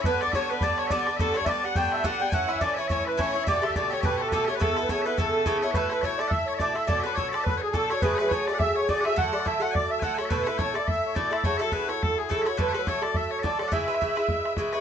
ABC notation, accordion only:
X:1
M:4/4
L:1/16
Q:"Swing" 1/4=211
K:Amix
V:1 name="Accordion"
B2 d2 c2 B2 d2 c2 d4 | A2 c3/2 e/2 d2 f2 g2 e2 f2 g2 | f2 e2 d2 c2 c2 B2 c4 | d2 e2 d2 c2 B2 A2 A2 c B |
A3 B c2 B2 A4 z2 c2 | [K:Emix] B2 B2 c2 d2 e2 c2 d2 e2 | d2 B3/2 d/2 c2 d2 B2 G2 A2 c2 | B2 B2 c2 d2 e2 c2 d2 e2 |
f2 d2 e2 f2 d2 e2 f2 c2 | B2 B2 c2 d2 e2 c2 d2 e2 | c2 A2 B2 c2 A2 G2 A2 c2 | B2 B2 c2 d2 e2 c2 d2 d2 |
e12 z2 c2 |]